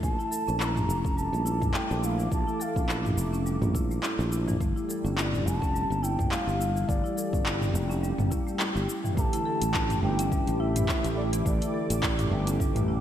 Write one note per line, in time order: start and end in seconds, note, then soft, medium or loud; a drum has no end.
0.00 0.16 A#1 medium
0.00 0.12 A3 medium
0.00 0.87 E5 medium
0.00 0.62 A5 loud
0.00 kick loud
0.00 shaker soft
0.17 4.60 A3 medium
0.17 0.31 E4 medium
0.17 shaker soft
0.31 0.47 A4 medium
0.31 shaker medium
0.47 0.85 A#1 medium
0.47 0.59 C#4 medium
0.47 shaker soft
0.60 0.75 E4 medium
0.60 0.66 D6 loud
0.60 clap medium
0.60 shaker soft
0.65 1.19 A#5 loud
0.76 0.88 G4 medium
0.76 mid tom medium
0.76 shaker soft
0.89 1.28 F1 medium
0.89 1.04 A#3 medium
0.89 shaker medium
1.01 1.16 C#4 medium
1.01 6.20 D6 medium
1.05 kick loud
1.05 shaker soft
1.17 1.26 G3 medium
1.17 1.77 A5 loud
1.17 shaker soft
1.33 1.70 A#1 loud
1.33 1.44 A#3 medium
1.33 shaker soft
1.45 1.60 E4 medium
1.45 shaker medium
1.61 1.73 A3 medium
1.61 kick loud
1.61 mid tom medium
1.61 shaker soft
1.74 1.90 E4 loud
1.74 2.07 G5 medium
1.74 clap medium
1.74 shaker soft
1.90 2.28 A#1 loud
1.90 2.02 G4 medium
1.90 shaker soft
2.03 2.17 E4 medium
2.03 2.33 F5 medium
2.03 shaker medium
2.18 2.31 E3 medium
2.18 shaker soft
2.31 2.44 A#1 medium
2.31 2.40 A3 medium
2.31 2.63 A5 loud
2.31 kick loud
2.31 shaker soft
2.47 2.59 E4 medium
2.47 shaker soft
2.60 2.75 A4 medium
2.60 3.18 F5 medium
2.60 shaker medium
2.76 3.13 A#1 medium
2.76 2.87 C#4 medium
2.76 kick loud
2.76 shaker soft
2.88 3.04 E4 loud
2.88 clap medium
2.88 shaker soft
3.05 3.17 G4 medium
3.05 mid tom medium
3.05 shaker soft
3.17 3.57 F1 medium
3.17 3.32 A#3 medium
3.17 shaker medium
3.33 3.45 C#4 medium
3.33 shaker soft
3.46 3.55 G3 medium
3.46 shaker soft
3.62 3.99 A#1 loud
3.62 3.73 A#3 medium
3.62 mid tom medium
3.62 shaker soft
3.75 3.89 E4 medium
3.75 kick loud
3.75 shaker medium
3.91 4.02 A3 medium
3.91 shaker soft
4.03 4.19 E4 loud
4.03 clap medium
4.03 shaker soft
4.19 4.56 A#1 loud
4.19 4.31 G4 medium
4.19 shaker soft
4.32 4.46 E4 medium
4.32 shaker medium
4.47 4.60 E3 medium
4.47 mid tom medium
4.47 shaker soft
4.60 4.73 G1 medium
4.60 9.17 G3 medium
4.60 4.69 A3 medium
4.60 kick loud
4.60 shaker soft
4.76 4.88 E4 medium
4.76 13.01 G4 medium
4.76 shaker soft
4.89 5.04 A4 medium
4.89 shaker medium
5.05 5.42 G1 medium
5.05 5.16 C#4 medium
5.05 shaker soft
5.17 5.32 E4 medium
5.17 5.24 E5 medium
5.17 clap loud
5.17 shaker soft
5.23 5.48 D5 medium
5.33 5.45 G4 medium
5.33 mid tom medium
5.33 shaker soft
5.46 5.85 F1 medium
5.46 5.61 A#3 medium
5.46 5.58 G#5 loud
5.46 shaker medium
5.58 6.05 A5 loud
5.62 5.73 C#4 medium
5.62 kick medium
5.62 shaker soft
5.74 5.83 G3 medium
5.74 shaker soft
5.90 6.27 G1 loud
5.90 6.02 A#3 medium
5.90 shaker soft
6.03 6.17 E4 loud
6.03 6.33 G5 loud
6.03 shaker medium
6.19 6.30 A3 medium
6.19 kick medium
6.19 mid tom medium
6.19 shaker soft
6.31 6.47 E4 loud
6.31 6.90 F5 loud
6.31 clap medium
6.31 shaker soft
6.47 6.85 G1 loud
6.47 6.60 G4 medium
6.47 shaker soft
6.60 6.74 E4 medium
6.60 shaker medium
6.76 6.88 E3 medium
6.76 shaker soft
6.88 7.02 G1 medium
6.88 6.98 A3 medium
6.88 8.03 D5 medium
6.88 kick loud
6.88 shaker soft
7.04 7.16 E4 loud
7.04 shaker soft
7.17 7.32 A4 medium
7.17 shaker medium
7.33 7.70 G1 medium
7.33 7.45 C#4 medium
7.33 kick loud
7.33 shaker soft
7.46 7.61 E4 loud
7.46 clap loud
7.46 shaker soft
7.61 7.74 G4 medium
7.61 mid tom medium
7.61 shaker soft
7.74 8.13 F1 loud
7.74 7.89 A#3 medium
7.74 shaker medium
7.90 8.01 C#4 medium
7.90 shaker soft
8.03 8.12 G3 medium
8.03 shaker soft
8.18 8.29 G1 medium
8.18 8.30 A#3 medium
8.18 mid tom medium
8.18 shaker soft
8.31 8.45 E4 medium
8.31 kick loud
8.31 shaker medium
8.47 8.59 A3 medium
8.47 shaker soft
8.59 8.75 E4 medium
8.59 clap medium
8.59 shaker soft
8.76 8.86 G1 medium
8.76 8.88 G4 medium
8.76 shaker soft
8.88 9.03 E4 medium
8.88 shaker medium
9.04 9.17 E3 loud
9.04 mid tom medium
9.04 shaker soft
9.15 9.30 A1 medium
9.15 10.00 D3 medium
9.15 9.99 E3 loud
9.15 13.01 A3 medium
9.15 9.26 A3 medium
9.15 10.00 A3 medium
9.15 9.22 A#5 loud
9.15 kick loud
9.15 shaker medium
9.19 10.01 G4 loud
9.19 9.99 A5 loud
9.31 13.01 E4 medium
9.31 9.45 E4 loud
9.31 closed hi-hat soft
9.31 shaker soft
9.46 9.61 A4 loud
9.62 9.99 A1 medium
9.62 9.73 C#4 medium
9.62 closed hi-hat medium
9.62 shaker medium
9.70 13.01 D6 medium
9.74 9.89 E4 loud
9.74 kick loud
9.74 clap loud
9.74 shaker soft
9.90 10.02 G4 medium
9.90 closed hi-hat soft
9.90 mid tom medium
9.90 shaker soft
10.02 10.42 G1 medium
10.02 10.26 E3 medium
10.02 10.18 A3 medium
10.02 10.27 A3 medium
10.02 10.27 D4 medium
10.02 10.27 G4 medium
10.02 10.61 G5 loud
10.19 10.31 C#4 loud
10.19 closed hi-hat medium
10.19 shaker medium
10.32 10.41 G3 medium
10.32 kick loud
10.32 shaker medium
10.47 10.85 A1 loud
10.47 10.59 A3 medium
10.47 closed hi-hat soft
10.47 shaker soft
10.60 10.75 E4 loud
10.60 11.16 E5 loud
10.76 10.88 A3 medium
10.76 closed hi-hat medium
10.76 mid tom medium
10.76 shaker medium
10.88 11.04 E4 loud
10.88 kick loud
10.88 clap loud
10.88 shaker medium
11.04 11.42 A1 loud
11.04 11.17 G4 medium
11.04 closed hi-hat soft
11.04 shaker soft
11.17 11.32 E4 medium
11.17 11.23 D5 medium
11.32 11.45 E3 loud
11.32 closed hi-hat medium
11.32 shaker medium
11.44 11.59 A1 medium
11.44 12.29 D3 medium
11.44 12.28 E3 medium
11.44 11.55 A3 medium
11.44 12.29 A3 medium
11.44 12.30 G4 medium
11.44 12.56 D5 medium
11.44 kick loud
11.44 shaker medium
11.61 11.74 E4 loud
11.61 closed hi-hat soft
11.61 shaker soft
11.74 11.89 A4 medium
11.90 12.27 A1 medium
11.90 12.01 C#4 medium
11.90 closed hi-hat medium
11.90 shaker medium
12.03 12.18 E4 loud
12.03 kick loud
12.03 clap medium
12.03 shaker medium
12.19 12.31 G4 medium
12.19 closed hi-hat soft
12.19 mid tom medium
12.19 shaker soft
12.30 12.71 G1 loud
12.30 13.01 D3 medium
12.30 13.01 E3 medium
12.30 12.46 A3 medium
12.30 13.01 A3 medium
12.34 13.01 G4 loud
12.47 12.59 C#4 loud
12.47 closed hi-hat medium
12.47 shaker medium
12.60 12.69 G3 medium
12.60 kick loud
12.60 shaker medium
12.75 13.01 A1 loud
12.75 12.87 A3 medium
12.75 closed hi-hat soft
12.75 mid tom medium
12.75 shaker soft
12.88 13.01 E4 loud